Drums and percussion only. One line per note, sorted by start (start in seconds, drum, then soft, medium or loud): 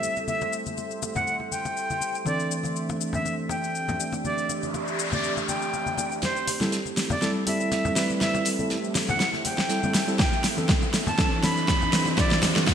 0.03 cabasa medium
0.17 muted conga soft
0.17 cabasa soft
0.28 high conga medium
0.28 cabasa soft
0.41 muted conga medium
0.41 cabasa soft
0.53 cabasa medium
0.66 high conga medium
0.66 cabasa soft
0.77 muted conga soft
0.77 cabasa soft
0.91 cabasa soft
1.02 muted conga medium
1.02 cabasa medium
1.15 high conga medium
1.15 low conga medium
1.15 cabasa soft
1.27 cabasa soft
1.40 muted conga medium
1.52 high conga medium
1.52 cabasa medium
1.65 muted conga medium
1.65 cabasa soft
1.77 cabasa soft
1.90 high conga medium
1.90 cabasa soft
2.01 muted conga soft
2.01 cabasa medium
2.15 cabasa soft
2.26 muted conga medium
2.26 high conga medium
2.26 cabasa soft
2.40 cabasa soft
2.51 cabasa medium
2.64 muted conga soft
2.64 high conga medium
2.64 cabasa soft
2.76 cabasa soft
2.89 muted conga medium
2.89 cabasa soft
3.01 cabasa medium
3.13 high conga medium
3.13 low conga medium
3.13 cabasa soft
3.25 muted conga medium
3.25 cabasa soft
3.49 muted conga medium
3.49 high conga medium
3.49 cabasa medium
3.64 cabasa soft
3.75 cabasa soft
3.88 muted conga medium
3.88 high conga medium
3.88 low conga medium
3.88 cabasa soft
4.00 cabasa medium
4.13 muted conga medium
4.13 cabasa soft
4.25 high conga medium
4.25 cabasa soft
4.38 cabasa soft
4.49 muted conga medium
4.49 cabasa medium
4.63 high conga medium
4.63 cabasa soft
4.74 muted conga medium
4.74 cabasa soft
4.88 cabasa soft
4.99 cabasa medium
5.12 muted conga medium
5.12 high conga medium
5.12 low conga medium
5.12 cabasa soft
5.24 cabasa soft
5.37 muted conga medium
5.37 cabasa soft
5.49 high conga medium
5.49 cabasa medium
5.62 cabasa soft
5.73 muted conga medium
5.73 cabasa soft
5.86 high conga medium
5.86 cabasa soft
5.98 muted conga medium
5.98 cabasa medium
6.12 cabasa soft
6.22 snare soft
6.22 closed hi-hat medium
6.22 muted conga soft
6.22 high conga loud
6.22 cabasa soft
6.36 cabasa soft
6.47 closed hi-hat medium
6.47 open hi-hat loud
6.47 muted conga medium
6.47 cabasa medium
6.61 snare soft
6.61 high conga medium
6.61 cabasa soft
6.72 snare loud
6.72 closed hi-hat medium
6.72 cabasa soft
6.86 muted conga medium
6.86 cabasa soft
6.96 snare medium
6.96 open hi-hat medium
6.96 cabasa medium
7.10 muted conga medium
7.10 high conga loud
7.10 low conga medium
7.10 cabasa soft
7.22 snare soft
7.22 closed hi-hat medium
7.22 cabasa soft
7.47 closed hi-hat medium
7.47 open hi-hat loud
7.47 muted conga medium
7.47 high conga medium
7.47 cabasa medium
7.60 cabasa soft
7.72 snare loud
7.72 closed hi-hat medium
7.72 muted conga medium
7.72 cabasa soft
7.85 high conga medium
7.85 low conga medium
7.85 cabasa soft
7.96 snare medium
7.96 snare loud
7.96 closed hi-hat medium
7.96 open hi-hat medium
7.96 cabasa medium
8.10 muted conga soft
8.10 cabasa soft
8.21 snare loud
8.21 snare medium
8.21 closed hi-hat medium
8.21 high conga medium
8.21 cabasa soft
8.34 muted conga medium
8.34 cabasa soft
8.45 closed hi-hat medium
8.45 open hi-hat loud
8.45 cabasa medium
8.59 high conga medium
8.59 cabasa soft
8.70 snare loud
8.70 closed hi-hat medium
8.70 muted conga soft
8.70 cabasa soft
8.84 cabasa soft
8.95 snare medium
8.95 closed hi-hat medium
8.95 open hi-hat loud
8.95 muted conga medium
8.95 cabasa medium
9.09 high conga loud
9.09 low conga loud
9.09 cabasa soft
9.20 snare medium
9.20 closed hi-hat medium
9.20 cabasa soft
9.33 snare medium
9.33 muted conga medium
9.45 closed hi-hat medium
9.45 open hi-hat loud
9.45 high conga medium
9.45 cabasa medium
9.58 snare medium
9.58 muted conga medium
9.58 cabasa soft
9.69 snare loud
9.69 closed hi-hat medium
9.69 cabasa soft
9.83 high conga loud
9.83 cabasa soft
9.94 snare medium
9.94 closed hi-hat medium
9.94 open hi-hat medium
9.94 muted conga soft
9.94 cabasa medium
10.08 cabasa soft
10.19 kick loud
10.19 snare medium
10.19 closed hi-hat medium
10.19 muted conga medium
10.19 high conga loud
10.19 cabasa soft
10.33 cabasa soft
10.44 snare medium
10.44 closed hi-hat medium
10.44 open hi-hat loud
10.44 cabasa medium
10.58 muted conga medium
10.58 high conga medium
10.58 cabasa soft
10.69 kick loud
10.69 snare loud
10.69 snare medium
10.69 closed hi-hat medium
10.69 cabasa soft
10.82 muted conga medium
10.82 cabasa soft
10.94 snare medium
10.94 open hi-hat loud
10.94 open hi-hat medium
10.94 cabasa medium
11.07 high conga loud
11.07 low conga medium
11.07 cabasa soft
11.18 kick loud
11.18 snare medium
11.18 closed hi-hat medium
11.18 muted conga medium
11.18 cabasa soft
11.43 snare medium
11.43 closed hi-hat medium
11.43 open hi-hat loud
11.43 muted conga medium
11.43 high conga medium
11.43 cabasa medium
11.56 snare soft
11.56 cabasa soft
11.68 kick loud
11.68 snare medium
11.68 snare loud
11.68 closed hi-hat medium
11.68 cabasa soft
11.81 muted conga soft
11.81 high conga medium
11.81 low conga medium
11.81 cabasa soft
11.93 snare medium
11.93 snare soft
11.93 closed hi-hat medium
11.93 open hi-hat loud
11.93 cabasa medium
12.06 muted conga medium
12.06 cabasa soft
12.18 kick loud
12.18 snare medium
12.18 closed hi-hat medium
12.18 high conga medium
12.18 cabasa soft
12.31 snare medium
12.31 cabasa soft
12.42 snare loud
12.42 closed hi-hat medium
12.42 open hi-hat loud
12.42 muted conga medium
12.42 low conga medium
12.42 cabasa medium
12.56 snare medium
12.56 high conga medium
12.56 cabasa soft
12.67 kick loud
12.67 snare medium
12.67 snare loud
12.67 closed hi-hat loud
12.67 muted conga medium
12.67 cabasa soft